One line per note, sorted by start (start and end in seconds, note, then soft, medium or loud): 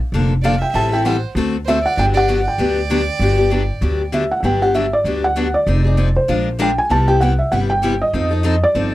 0.12 0.61 F1 medium
0.12 0.32 D3 medium
0.12 0.32 F3 medium
0.12 0.33 A#3 medium
0.12 0.33 D4 medium
0.12 0.33 A4 medium
0.42 0.54 D3 medium
0.42 0.54 F3 medium
0.42 0.54 A#3 medium
0.42 0.54 D4 medium
0.42 0.54 A4 medium
0.42 0.59 D5 medium
0.42 0.61 F5 medium
0.61 0.72 E5 medium
0.61 0.75 G5 medium
0.73 1.23 A1 medium
0.73 0.91 E3 medium
0.73 0.91 G3 medium
0.73 0.91 C4 medium
0.73 0.92 E4 medium
0.73 0.91 A4 medium
0.73 0.90 E5 medium
0.73 0.91 A5 medium
0.91 1.04 C4 soft
0.91 1.05 E4 medium
0.91 1.04 A4 medium
0.91 1.03 E5 medium
0.91 1.06 G5 medium
1.05 1.15 E3 medium
1.05 1.15 G3 medium
1.05 1.16 C4 medium
1.05 1.16 E4 medium
1.05 1.16 A4 medium
1.05 1.22 C5 medium
1.05 1.22 F#5 medium
1.35 1.84 D2 medium
1.35 1.55 D3 medium
1.35 1.55 A3 medium
1.35 1.55 C4 medium
1.35 1.56 F#4 medium
1.35 1.56 A4 medium
1.66 1.77 D3 medium
1.66 1.78 A3 medium
1.66 1.78 C4 medium
1.66 1.78 F#4 medium
1.66 1.78 A4 medium
1.66 1.83 C5 medium
1.66 1.86 E5 medium
1.84 1.96 D5 medium
1.84 1.98 F#5 medium
1.97 2.46 G1 medium
1.97 2.15 D3 medium
1.97 2.15 F#3 medium
1.97 2.15 B3 medium
1.97 2.15 D4 medium
1.97 2.14 G4 medium
1.97 2.05 D5 medium
1.97 2.04 G5 medium
2.14 2.28 B3 soft
2.14 2.28 D4 soft
2.14 2.27 G4 medium
2.14 2.43 D5 medium
2.14 2.45 F#5 loud
2.28 2.38 D3 medium
2.28 2.39 F#3 medium
2.28 2.39 B3 medium
2.28 2.39 D4 medium
2.28 2.39 G4 medium
2.46 4.09 D5 medium
2.46 4.10 G5 medium
2.58 3.08 D2 medium
2.58 2.78 D3 medium
2.58 2.78 F#3 medium
2.58 2.78 B3 medium
2.58 2.79 D4 medium
2.58 2.79 G4 medium
2.90 3.00 D3 medium
2.90 3.00 F#3 medium
2.90 3.01 B3 medium
2.90 3.01 D4 medium
2.90 3.01 G4 loud
3.19 3.69 G1 medium
3.19 3.38 D3 medium
3.19 3.38 F#3 medium
3.19 3.38 B3 medium
3.19 3.38 D4 medium
3.19 3.37 G4 medium
3.38 3.50 B3 soft
3.38 3.50 D4 soft
3.38 3.50 G4 medium
3.50 3.61 D3 medium
3.50 3.62 F#3 medium
3.50 3.62 B3 medium
3.50 3.62 D4 medium
3.50 3.62 G4 medium
3.81 4.31 D2 medium
3.81 4.01 D3 medium
3.81 4.01 F#3 medium
3.81 4.01 B3 medium
3.81 4.02 D4 medium
3.81 4.02 G4 medium
4.12 4.23 D3 medium
4.12 4.23 F#3 medium
4.12 4.23 B3 medium
4.12 4.24 D4 medium
4.12 4.24 G4 medium
4.12 4.32 E5 medium
4.31 4.39 F#5 medium
4.40 4.92 G1 medium
4.40 4.61 D3 medium
4.40 4.61 F#3 medium
4.40 4.61 B3 medium
4.40 4.44 F#5 medium
4.45 4.61 D4 medium
4.45 4.61 G4 medium
4.45 4.61 G5 medium
4.62 4.74 B3 soft
4.62 4.74 D4 soft
4.62 4.74 G4 medium
4.62 4.74 F#5 medium
4.74 4.85 D3 medium
4.74 4.85 F#3 medium
4.74 4.85 B3 medium
4.74 4.85 D4 medium
4.74 4.85 G4 medium
4.74 4.91 E5 medium
4.93 5.24 D5 medium
5.04 5.54 D2 medium
5.04 5.24 D3 medium
5.04 5.25 F#3 medium
5.04 5.25 B3 medium
5.04 5.25 D4 medium
5.04 5.25 G4 medium
5.24 5.52 F#5 medium
5.36 5.46 D3 medium
5.36 5.47 F#3 medium
5.36 5.47 B3 medium
5.36 5.47 D4 medium
5.36 5.47 G4 medium
5.54 6.12 D5 medium
5.67 6.16 F1 medium
5.67 5.84 F3 medium
5.67 5.85 C4 medium
5.67 5.84 D#4 medium
5.67 5.83 G#4 medium
5.84 5.96 C4 soft
5.84 5.97 D#4 soft
5.84 5.97 G#4 soft
5.97 6.08 F3 medium
5.97 6.08 C4 medium
5.97 6.08 D#4 medium
5.97 6.08 G#4 medium
6.16 6.57 C5 medium
6.28 6.78 A#1 medium
6.28 6.48 F3 medium
6.28 6.48 G#3 medium
6.28 6.48 D4 medium
6.28 6.48 F4 medium
6.28 6.48 A#4 medium
6.59 6.69 F3 medium
6.59 6.70 G#3 medium
6.59 6.70 D4 medium
6.59 6.70 F4 medium
6.59 6.70 A#4 loud
6.59 6.79 G5 medium
6.78 6.90 G#5 medium
6.89 7.39 C2 medium
6.89 7.07 C3 medium
6.89 7.07 G3 medium
6.89 7.07 B3 medium
6.89 7.07 E4 medium
6.89 7.06 G4 medium
6.89 7.07 A5 loud
7.08 7.21 B3 soft
7.08 7.21 E4 soft
7.08 7.20 G4 medium
7.08 7.21 G5 medium
7.21 7.32 C3 medium
7.21 7.32 G3 medium
7.21 7.32 B3 medium
7.21 7.32 E4 medium
7.21 7.32 G4 medium
7.21 7.39 F#5 medium
7.39 7.51 E5 medium
7.52 8.01 G1 medium
7.52 7.71 C3 medium
7.52 7.71 G3 medium
7.52 7.71 B3 medium
7.52 7.72 E4 medium
7.52 7.72 G4 medium
7.52 7.57 F#5 medium
7.70 8.01 G5 medium
7.82 7.93 C3 medium
7.82 7.93 G3 medium
7.82 7.93 B3 medium
7.82 7.93 E4 medium
7.82 7.94 G4 medium
8.02 8.65 D#5 medium
8.13 8.63 F2 medium
8.13 8.31 F3 medium
8.13 8.31 C4 medium
8.13 8.30 D#4 medium
8.13 8.29 A4 medium
8.31 8.43 C4 soft
8.31 8.43 D#4 medium
8.31 8.43 A4 medium
8.43 8.54 F3 medium
8.43 8.55 C4 medium
8.43 8.55 D#4 medium
8.43 8.55 A4 medium
8.64 8.95 D5 medium
8.75 8.95 G1 medium
8.75 8.94 F3 medium
8.75 8.94 C4 medium
8.75 8.95 D#4 medium
8.75 8.95 A4 medium